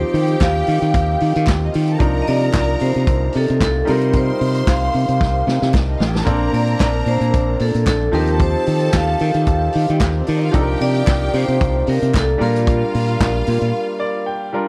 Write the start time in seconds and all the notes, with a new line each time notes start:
Already playing: D#3 F3 C4 D#4 F4 G4 C5 G5
0.14 D#3, open hi-hat
0.28 closed hi-hat
0.41 D#2 F5, kick, snare, clap, closed hi-hat
0.67 D#3, open hi-hat
0.82 D#3, closed hi-hat
0.94 D#2, kick, closed hi-hat
1.20 D#3, open hi-hat
1.35 D#3, closed hi-hat
1.47 D#2, kick, snare, clap, closed hi-hat
1.49 clap
1.64 D#4 D#5
1.73 D#3 F4 F5, open hi-hat
1.82 G4 G5
1.88 closed hi-hat
1.92 A4 A5
1.99 C2 C3 D#3 F3 A#3 D4 D#4 A#4 D5 A#5, kick, closed hi-hat
2.22 D#5
2.27 C3 D5, open hi-hat
2.40 closed hi-hat
2.53 C2, kick, snare, clap, closed hi-hat
2.79 C3 C5, open hi-hat
2.94 C3, closed hi-hat
3.07 C2, kick, closed hi-hat
3.33 C3, open hi-hat
3.37 A4
3.48 C3, closed hi-hat
3.61 C2 A4, kick, snare, clap, closed hi-hat
3.85 C3 G3 C4 D#4 F4 G4 A#4 C5 C6, open hi-hat
3.90 A#4
4.01 closed hi-hat
4.13 C5, kick, closed hi-hat
4.41 C3, open hi-hat
4.54 closed hi-hat
4.67 C2 F5, kick, snare, clap, closed hi-hat
4.93 C3, open hi-hat
5.08 C3, closed hi-hat
5.21 C2, kick, snare
5.47 C3, snare
5.62 C3, snare
5.72 C2 C4 C5, kick, snare, clap
5.80 D4 D5
5.89 D#4 D#5
5.98 A1 F4 F5, snare
6.09 G4 G5
6.15 A4 A5, snare
6.24 A#1 A#3 C4 D4 A4 A#4 A#5, kick, closed hi-hat
6.34 A#4
6.53 A#2 D5, open hi-hat
6.67 closed hi-hat
6.80 A#1, kick, snare, clap, closed hi-hat
7.06 A#2 C5, open hi-hat
7.21 A#2, closed hi-hat
7.34 A#1, kick, closed hi-hat
7.59 A#2 A4, open hi-hat
7.74 A#2, closed hi-hat
7.87 A#1 A4, kick, snare, clap, closed hi-hat
8.11 D#2 D#3 F3 C4 D#4 F4 G4 A4 A#4 A5, open hi-hat
8.27 closed hi-hat
8.39 C5, kick, closed hi-hat
8.66 D#3, open hi-hat
8.80 closed hi-hat
8.93 D#2 F5, kick, snare, clap, closed hi-hat
9.19 D#3, open hi-hat
9.34 D#3, closed hi-hat
9.46 D#2, kick, closed hi-hat
9.73 D#3, open hi-hat
9.88 D#3 G3 G4, closed hi-hat
10.00 D#2 A3 A4, kick, snare, clap, closed hi-hat
10.10 A#3 A#4
10.18 C4 C5
10.26 D#3 D4 D5, open hi-hat
10.37 D#4 D#5
10.41 F4 F5, closed hi-hat
10.52 C2 C3 D#3 F3 A#3 D4 D#4 F4 G4 A4 D5 G5, kick, closed hi-hat
10.61 A#4
10.81 C3 D5, open hi-hat
10.94 closed hi-hat
11.07 C2, kick, snare, clap, closed hi-hat
11.33 C3 C5, open hi-hat
11.48 C3, closed hi-hat
11.61 C2, kick, closed hi-hat
11.87 C3 A#4, open hi-hat
12.02 C3, closed hi-hat
12.14 C2, kick, snare, clap, closed hi-hat
12.16 A4, clap
12.38 A#2 G3 D4 F4 A#4 F5, open hi-hat
12.43 A#4
12.56 closed hi-hat
12.67 kick, closed hi-hat
12.94 A#2, open hi-hat
13.08 closed hi-hat
13.20 A#1, kick, snare, clap, closed hi-hat
13.47 A#2, open hi-hat
13.61 A#2, closed hi-hat
14.00 D5
14.26 G5
14.53 G3 D4 F4 A#4